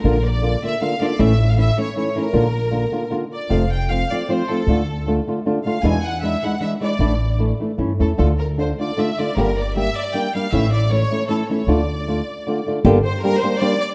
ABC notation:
X:1
M:3/4
L:1/16
Q:"Swing" 1/4=155
K:Dm
V:1 name="Violin section"
B2 d4 e2 f2 d2 | e3 f e2 ^c2 c2 B2- | B8 z2 d2 | f2 g2 f2 d2 c2 A2- |
A4 z6 f2 | ^g2 ^f2 e2 f2 e2 d2- | d4 z6 A2 | A2 B2 c2 d2 e2 d2 |
B2 d2 e2 d2 g2 f2 | e2 d2 ^c4 A2 c2 | d8- d2 z2 | [K:Gm] z2 c2 B2 c2 d2 d2 |]
V:2 name="Nylon-string guitar"
[B,,D,B,DF]2 z2 [D,B,DF]2 [D,B,DF]2 [D,B,DF]2 [D,B,DF]2 | [A,,E,A,^CE]2 z2 [E,A,CE]2 [E,A,CE]2 [E,A,CE]2 [E,A,CE]2 | [B,,D,B,DF]2 z2 [D,B,DF]2 [D,B,DF]2 [D,B,DF]2 z2 | [F,,C,F,A,CF]2 z2 [F,A,CF]2 [F,A,CF]2 [F,A,CF]2 [F,A,CF]2 |
[D,A,DF]2 z2 [D,A,DF]2 [D,A,DF]2 [D,A,DF]2 [D,A,DF]2 | [E,,=B,,E,^G,DE]2 z2 [E,G,DE]2 [E,G,DE]2 [E,G,DE]2 [E,G,DE]2 | [A,,E,A,DE]2 z2 [E,A,DE]2 [E,A,DE]2 [E,A,^CE]2 [E,A,CE]2 | [D,A,DF]2 z2 [D,A,DF]2 [D,A,DF]2 [D,A,DF]2 [D,A,DF]2 |
[G,,D,G,B,DG]2 z2 [G,B,DG]2 z2 [G,B,DG]2 [G,B,DG]2 | [A,,E,A,^CE]2 z2 [E,A,CE]2 [E,A,CE]2 [E,A,CE]2 [E,A,CE]2 | [D,A,DF]2 z2 [D,A,DF]2 z2 [D,A,DF]2 [D,A,DF]2 | [K:Gm] [G,,D,G,B,DG]2 z2 [G,B,DG]2 [G,B,DG]2 [G,B,DG]2 z2 |]
V:3 name="Upright bass" clef=bass
B,,,8 z4 | A,,,8 z4 | B,,,8 z4 | F,,,8 z4 |
D,,8 z4 | E,,8 z4 | A,,,8 G,,2 E,,2 | D,,8 z4 |
G,,,8 z4 | A,,,8 z4 | D,,8 z4 | [K:Gm] G,,,2 z8 z2 |]